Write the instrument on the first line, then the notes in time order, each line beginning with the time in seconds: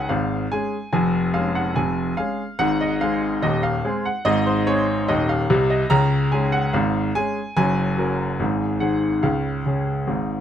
grand piano
Already playing: C#2 C#3 G#3 C#4 G#4 F#5 G#5 A#5
0.09 G#1 G#2 F5
0.52 G#3 C#4 G#4 G#5
0.93 F1 F2 G#5
1.34 G#3 C#4 G#4 F5
1.55 F#5
1.76 F1 F2 G#5
2.17 G#3 C#4 G#4 F5
2.59 G#1 G#2 F#5
2.81 D#5
3.01 G#3 C4 G#4 F5
3.42 D#1 D#2 D#5
3.63 F5
3.85 G#3 C4 G#4
4.05 F#5
4.25 G#1 G#2 D#5
4.46 C5
4.67 G#3 C4 G#4 C#5
5.08 D#1 D#2 D#5
5.29 F5
5.50 C2 C3
5.70 D#5
5.90 C#2 C#3 A#5
6.32 G#3 C#4 G#4 G#5
6.52 F#5
6.73 G#1 G#2 F5
7.15 G#3 C#4 G#4 G#5
7.57 F#1 F#2 G#5
7.98 F#3 C#4 A#4
8.40 G#1 G#2
8.80 D#3 C4 G#4 F#5
9.23 C#2 C#3 F5
9.66 C#3 C#4 G#4
10.07 G#1 G#2